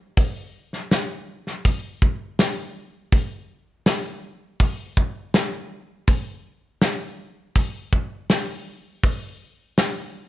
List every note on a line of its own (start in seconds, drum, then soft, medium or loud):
0.17 kick medium
0.17 open hi-hat soft
0.73 snare soft
0.91 snare medium
0.91 open hi-hat soft
1.47 snare soft
1.65 kick medium
1.65 open hi-hat soft
2.02 kick medium
2.39 snare loud
2.39 open hi-hat soft
3.12 kick medium
3.12 open hi-hat soft
3.86 snare medium
3.86 open hi-hat soft
4.60 kick medium
4.60 open hi-hat soft
4.97 kick medium
5.34 snare loud
5.34 open hi-hat soft
6.07 kick medium
6.07 open hi-hat soft
6.81 snare medium
6.81 open hi-hat soft
7.56 kick medium
7.56 open hi-hat soft
7.93 kick medium
8.30 snare loud
8.30 open hi-hat soft
9.03 kick medium
9.03 open hi-hat soft
9.78 snare loud
9.78 open hi-hat soft